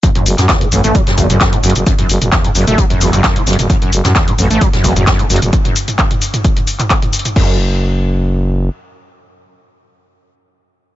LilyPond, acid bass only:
\new Staff \with { instrumentName = "Acid bass" } { \clef bass \time 4/4 \key fis \minor \tempo 4 = 131 fis,16 fis,16 r8 e,16 a,16 fis,16 a16 fis16 fis,16 e,16 fis,16 r16 a,16 fis,16 r16 | fis,16 fis,16 r8 e,16 a,16 fis,16 a16 fis16 fis,16 e,16 fis,16 fis,16 a,16 fis,16 r16 | fis,16 fis,16 r8 e,16 a,16 fis,16 a16 fis16 fis,16 e,16 fis,16 fis,16 a,16 fis,16 r16 | r1 |
fis,8 r2. r8 | r1 | }